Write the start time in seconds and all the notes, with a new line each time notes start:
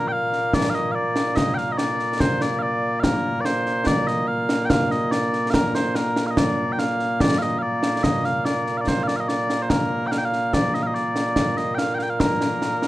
Already playing: A#2 A#3
0.08 G5
0.12 F5
0.33 snare
0.53 D5, concert bass drum, snare
0.70 F5, snare
0.75 D#5
0.92 D5 F5
1.16 snare
1.36 D#5, concert bass drum, snare
1.54 F5 G5, snare
1.72 D#5
1.78 D5, snare
1.99 snare
2.20 C5, concert bass drum, snare
2.41 D5, snare
2.59 D5 F5
3.00 A#4 F5, concert bass drum, snare
3.41 D5
3.45 C5, snare
3.66 snare
3.87 D5, concert bass drum, snare
4.07 D#5, snare
4.28 F5
4.49 snare
4.65 G5
4.70 F5, concert bass drum, snare
4.91 D#5, snare
5.12 D5, snare
5.33 snare
5.51 A#4 F5, concert bass drum, snare
5.75 C5, snare
5.95 A#4, snare
6.16 snare
6.27 D#5 F5
6.37 D5, concert bass drum, snare
6.73 G5
6.79 F5, snare
7.00 snare
7.20 D5, concert bass drum, snare
7.39 D#5 F5, snare
7.58 F5
7.62 D5
7.83 snare
8.03 D#5, concert bass drum, snare
8.24 F5, snare
8.45 D5, snare
8.67 snare
8.78 D5 F5
8.87 C5, concert bass drum, snare
9.03 F5
9.08 D5, snare
9.17 D#5 F5
9.29 D5, snare
9.50 snare
9.62 C5
9.70 A#4, concert bass drum, snare
10.07 G5
10.11 F5, snare
10.18 G5
10.25 F5
10.33 snare
10.54 D5, concert bass drum, snare
10.75 D#5, snare
10.83 F5
10.87 D#5
10.95 D5, snare
11.16 snare
11.36 concert bass drum, snare
11.57 D#5, snare
11.75 F5 G5, snare
11.95 G5
11.99 F5, snare
12.03 G5
12.10 F5
12.20 A#4, concert bass drum, snare
12.41 snare
12.62 snare
12.82 snare